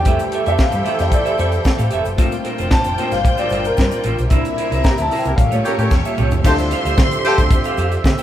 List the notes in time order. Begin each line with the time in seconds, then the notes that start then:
Already playing: G4 G5
0.05 F2 E3 G3 A3 E4 G4 A4 C5 E5 G5, kick, closed hi-hat, shaker
0.19 muted clean electric guitar stroke, closed hi-hat, shaker
0.32 G4 A4 E5, closed hi-hat
0.46 F2 G4 A4 E5, closed hi-hat, shaker
0.58 F5, muted clean electric guitar stroke, kick, snare, shaker
0.72 G2, muted clean electric guitar stroke, closed hi-hat, shaker
0.85 G3 A3 E4 G4 A4 E5, closed hi-hat
0.99 F2 E5, muted clean electric guitar stroke, snare, closed hi-hat, shaker
1.11 D5, muted clean electric guitar stroke, kick, closed hi-hat, shaker
1.25 G4 A4 E5, closed hi-hat, shaker
1.38 F2 G4 A4 C5 E5, closed hi-hat, shaker
1.52 muted clean electric guitar stroke, closed hi-hat, shaker
1.65 muted clean electric guitar stroke, kick, snare, shaker
1.79 A2 G4 A4 F5, closed hi-hat, shaker
1.91 F1 G4 A4 E5, closed hi-hat, shaker
2.05 F#1, muted clean electric guitar stroke, closed hi-hat, shaker
2.17 G1 A#2 G3 A3 A#3 C4 D4 F4 A#4 C5 G5, kick, closed hi-hat, shaker
2.32 muted clean electric guitar stroke, closed hi-hat, shaker
2.44 F4 A#4 C5, closed hi-hat
2.58 F1 F4 A#4 C5, closed hi-hat, shaker
2.71 A5, muted clean electric guitar stroke, kick, snare, shaker
2.84 F1, muted clean electric guitar stroke, closed hi-hat, shaker
2.97 A3 A#3 C4 F4 A#4 C5 G5, closed hi-hat
3.11 G1 F5, muted clean electric guitar stroke, snare, closed hi-hat, shaker
3.25 muted clean electric guitar stroke, kick, closed hi-hat, shaker
3.37 F4 A#4 C5 D5, closed hi-hat, shaker
3.50 G1 F4 A#4 C5, closed hi-hat, shaker
3.64 A#4, muted clean electric guitar stroke, closed hi-hat, shaker
3.77 G2, muted clean electric guitar stroke, kick, snare, shaker
3.91 F4 A#4 D5, closed hi-hat, shaker
4.04 A1 F4 A#4 C5, closed hi-hat, shaker
4.18 B1, muted clean electric guitar stroke, closed hi-hat, shaker
4.30 C2 C3 A#3 C4 D4 E4 A#4 C5 E5, kick, closed hi-hat, shaker
4.45 muted clean electric guitar stroke, closed hi-hat, shaker
4.57 E4 A#4 C5, closed hi-hat
4.72 C2 E4 A#4 C5, closed hi-hat, shaker
4.84 A#3 E4 G4 A#4 A#5, muted clean electric guitar stroke, kick, snare, shaker
4.98 D2 A5, muted clean electric guitar stroke, closed hi-hat, shaker
5.11 E4 A#4 C5, open hi-hat
5.19 G5
5.25 C2 A#3 E4 G4 A#4, muted clean electric guitar stroke, closed hi-hat, shaker
5.36 A1 G3 A#3 C#4 F4 G4 A4 C#5 F5, muted clean electric guitar stroke, kick, closed hi-hat, shaker
5.51 A2 F4 G4 C#5, closed hi-hat, shaker
5.64 C#4 F4 G4 A#4 C#5, closed hi-hat, shaker
5.72 A4
5.78 A2 C#4 G4 A#4 C#5, muted clean electric guitar stroke, closed hi-hat, shaker
5.91 E2, muted clean electric guitar stroke, kick, snare, shaker
6.05 F4 G4 E5, shaker
6.18 C2 F4 G4 C#5, mid tom, shaker
6.31 C#2, muted clean electric guitar stroke, floor tom, shaker
6.43 D2 D3 F3 G3 C4 D4 E4 F4 G4 A4 C5 E5 F5 C6, kick, crash, shaker
6.58 muted clean electric guitar stroke, closed hi-hat, shaker
6.71 G4 C5 F5, closed hi-hat, shaker
6.85 D2 G4 C5 F5, closed hi-hat, shaker
6.98 D3, muted clean electric guitar stroke, kick, snare, shaker
7.11 muted clean electric guitar stroke, closed hi-hat, shaker
7.25 C4 G4 A4 C5 F5, closed hi-hat
7.38 D2, muted clean electric guitar stroke, kick, closed hi-hat, shaker
7.51 muted clean electric guitar stroke, kick, closed hi-hat, shaker
7.64 G4 C5 F5, closed hi-hat, shaker
7.77 F2 G4 C5 F5, closed hi-hat, shaker
7.92 muted clean electric guitar stroke, closed hi-hat, shaker
8.04 D3, muted clean electric guitar stroke, kick, snare, shaker
8.18 C5 G5, closed hi-hat, shaker